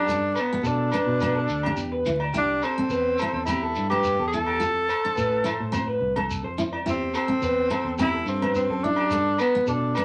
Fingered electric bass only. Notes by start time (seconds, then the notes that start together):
0.07 G2
0.63 B2
1.06 B2
1.49 D2
1.77 E2
2.06 D2
2.34 C2
2.90 E2
3.33 E2
3.77 G2
4.19 E2
4.62 F2
5.18 A2
5.60 A2
6.01 C2
6.43 F2
6.85 E2
7.42 E2
7.84 E2
8.25 G2
8.69 F#2
9.10 G2
9.67 B2